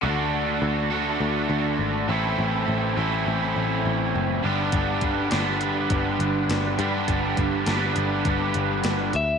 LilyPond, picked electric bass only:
\new Staff \with { instrumentName = "Picked electric bass" } { \clef bass \time 4/4 \key g \major \tempo 4 = 102 d,4 d,4 d,8 d,8 aes,,8 a,,8 | a,,8 a,,8 a,,8 a,,8 a,,8 a,,8 fis,,8 g,,8 | g,,4 g,,4 g,,8 g,,8 g,,8 g,8 | g,,8 g,,8 g,,8 g,,8 g,,8 g,,8 g,,8 d,8 | }